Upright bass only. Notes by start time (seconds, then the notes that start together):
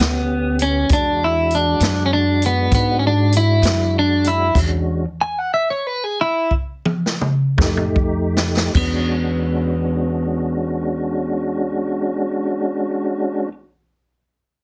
0.00 D2
0.90 E2
1.80 F#2
2.71 G#2
3.62 F#2
4.55 E2
7.58 F2
8.75 E2